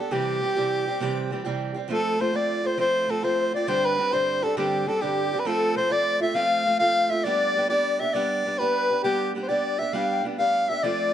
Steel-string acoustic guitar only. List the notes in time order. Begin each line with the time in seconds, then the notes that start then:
Already playing: G4
0.00 B3 D4
0.11 C3 E3 G3 C4 G4
0.42 E3 G3 C4 G4
0.56 C3 E3 G3 C4 G4
0.86 G3 C4 G4
1.00 C3 E3 G3 C4 G4
1.31 E3 G3 C4 G4
1.45 C3 E3 G3 C4 G4
1.74 G3 C4 G4
1.89 F3 A3 C4 F4
2.19 F3 A3 C4 F4
2.33 F3 A3 C4 F4
2.63 A3 C4 F4
2.78 F3 A3 C4 F4
3.08 F3 A3 C4 F4
3.23 F3 A3 C4 F4
3.53 A3 C4 F4
3.67 G2 D3 G3 C4 D4 G4
3.97 G3 C4 D4 G4
4.12 G2 D3 G3 C4 D4 G4
4.43 G3 C4 D4 G4
4.57 G2 D3 G3 C4 D4 G4
4.86 G3 C4 D4 G4
5.01 G2 D3 G3 C4 D4 G4
5.32 G3 C4 D4 G4
5.45 F3 A3 C4 F4
5.76 F3 A3 C4 F4
5.90 F3 A3 C4 F4
6.21 A3 C4 F4
6.34 F3 A3 C4 F4
6.65 F3 A3 C4 F4
6.80 F3 A3 C4 F4
7.10 A3 C4 F4
7.25 G3 B3 D4 G4
7.56 G3 B3 D4 G4
7.70 G3 B3 D4 G4
8.00 B3 D4 G4
8.15 G3 B3 D4 G4
8.45 G3 B3 D4 G4
8.60 G3 B3 D4 G4
8.90 B3 D4 G4
9.04 G3 B3 D4 G4
9.35 G3 B3 D4 G4
9.49 G3 B3 D4 G4
9.79 B3 D4 G4
9.93 G3 B3 D4 G4
10.24 G3 B3 D4 G4
10.38 G3 B3 D4 G4
10.69 B3 D4 G4
10.83 F3 A3 C4 F4